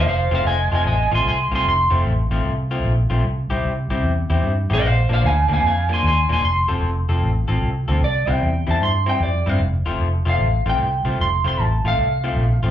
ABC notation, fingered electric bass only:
X:1
M:4/4
L:1/8
Q:"Swing" 1/4=151
K:F
V:1 name="Fingered electric bass" clef=bass
F,,, F,,, F,,, F,,, A,,, A,,, C,, C,, | F,,, F,,, A,,, A,,, C,,2 B,,, B,,, | C,, C,, C,, C,, E,, E,, G,, A,,, | B,,, B,,, D,, D,, F,,2 _E,, =E,,, |
F,,, F,,, F,,, F,,, A,,, A,,, C,, D,, | C,, C,, E,, E,, G,,2 F,, G,, | F,,, F,,, F,,, F,,, A,,, A,,, C,, C,, | F,,, F,,, A,,, A,,, C,,2 B,,, A,,, |]